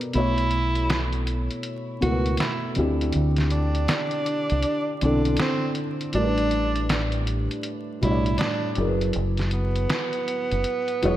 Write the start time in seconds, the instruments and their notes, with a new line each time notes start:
Already playing: felt piano B2 B3 A4 A#4 B4 D5
0.01 closed hi-hat
0.13 fingered electric bass B1, felt piano B2 A3 E4, tenor saxophone E4, closed hi-hat
0.18 felt piano C#5
0.38 closed hi-hat
0.51 closed hi-hat
0.75 closed hi-hat
0.90 snare, closed hi-hat
1.13 closed hi-hat
1.27 closed hi-hat
1.51 closed hi-hat
1.63 closed hi-hat
2.01 fingered electric bass C#2, felt piano B2 A3 E4 A#4, tenor saxophone F#4, closed hi-hat
2.11 felt piano B4
2.26 closed hi-hat
2.37 tenor saxophone E4, snare, closed hi-hat
2.75 fingered electric bass D2, felt piano D3 C4 E4, closed hi-hat
2.79 felt piano G4
3.01 closed hi-hat
3.13 fingered electric bass D2, closed hi-hat
3.37 snare, closed hi-hat
3.51 tenor saxophone D4, closed hi-hat
3.75 closed hi-hat
3.88 snare, closed hi-hat
4.11 closed hi-hat
4.26 closed hi-hat
4.50 fingered electric bass C2, closed hi-hat
4.62 closed hi-hat
5.01 fingered electric bass B1, felt piano D3 C4 E4, tenor saxophone D4, closed hi-hat
5.06 felt piano A4
5.25 closed hi-hat
5.37 tenor saxophone C4, snare, closed hi-hat
5.75 closed hi-hat
6.01 closed hi-hat
6.13 fingered electric bass A1, felt piano A2 G3 D4, tenor saxophone D4, closed hi-hat
6.17 felt piano A#4
6.24 felt piano B4
6.38 closed hi-hat
6.51 closed hi-hat
6.76 closed hi-hat
6.89 snare, closed hi-hat
7.12 closed hi-hat
7.27 closed hi-hat
7.51 closed hi-hat
7.63 closed hi-hat
8.01 fingered electric bass B1, felt piano A2 G3 D4 C#5, tenor saxophone E4, closed hi-hat
8.11 felt piano D5
8.26 closed hi-hat
8.38 tenor saxophone D4, snare, closed hi-hat
8.75 fingered electric bass F#1, felt piano F#3 E4 G#4, closed hi-hat
8.81 felt piano A#4
8.87 felt piano B4
9.01 closed hi-hat
9.13 fingered electric bass F#1, closed hi-hat
9.37 snare, closed hi-hat
9.51 tenor saxophone B3, closed hi-hat
9.76 closed hi-hat
9.89 snare, closed hi-hat
10.13 closed hi-hat
10.28 closed hi-hat
10.52 fingered electric bass F#1, closed hi-hat
10.64 closed hi-hat
10.88 closed hi-hat
11.02 fingered electric bass E1, felt piano F#3 E4 G#4 C#5, closed hi-hat